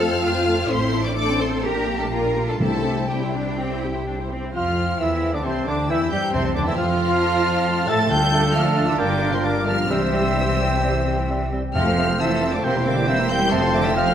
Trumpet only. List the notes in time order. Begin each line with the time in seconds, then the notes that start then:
4.56 F5
5.01 E5
5.34 D5
5.46 C5
5.69 D5
5.91 E5
6.13 G5
6.34 C5
6.57 D5
6.68 E5
6.79 F5
7.88 A5
8.11 A4
8.99 A#4
9.91 C5
11.75 C5
12.65 C5
13.08 C5
13.52 C5
13.96 C5